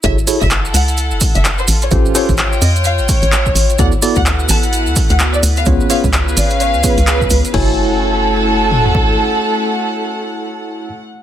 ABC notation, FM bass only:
X:1
M:4/4
L:1/16
Q:"Swing 16ths" 1/4=128
K:F#m
V:1 name="FM bass" clef=bass
F,,, z2 F,,,3 C,,3 F,,, z F,,,3 A,,,2 | A,,, z2 A,,,3 ^E,,3 A,,, z A,,,3 A,,,2 | D,, z2 D,,3 A,,,3 D,, z D,,3 D,,2 | C,, z2 C,,3 G,,,3 C,, z C,,3 C,, z |
F,,,12 z4 | z16 |]